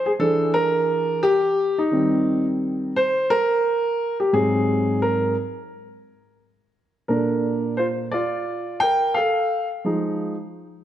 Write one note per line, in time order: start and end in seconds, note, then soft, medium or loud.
0.06 0.11 G#4 medium
0.19 1.19 E3 medium
0.19 1.19 D4 medium
0.19 1.19 G#4 medium
0.19 0.52 A4 loud
0.54 1.25 A#4 loud
1.23 1.80 G4 loud
1.78 2.43 D#4 medium
1.92 2.91 D#3 medium
1.92 2.92 G3 soft
1.92 2.92 C4 medium
2.96 3.31 C5 loud
3.30 4.16 A#4 loud
4.20 4.32 G4 medium
4.33 5.33 G#2 medium
4.33 5.33 F#3 medium
4.33 5.33 C4 medium
4.33 4.98 G#4 medium
5.02 5.34 A#4 medium
7.08 8.08 A#2 medium
7.08 7.75 D4 medium
7.08 8.09 A4 soft
7.08 7.74 A#4 medium
7.77 7.87 F4 medium
7.77 7.85 C5 medium
8.12 8.78 F4 medium
8.12 8.83 D5 medium
8.80 9.14 A#4 medium
8.80 9.16 G5 loud
9.14 9.68 A4 medium
9.14 9.67 F5 medium
9.84 10.33 F3 medium
9.84 10.34 G#3 soft
9.84 10.34 D#4 medium